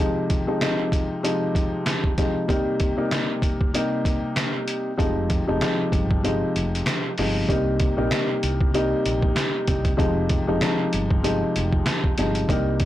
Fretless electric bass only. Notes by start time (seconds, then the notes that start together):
4.99 F1
5.49 F1
5.93 G1
6.56 F1
7.19 G1
7.49 C2
7.98 A#1
8.43 C2
9.06 A#1
9.68 C2
9.99 F1
10.49 F1
10.94 G1
11.56 F1
12.19 G1
12.49 C2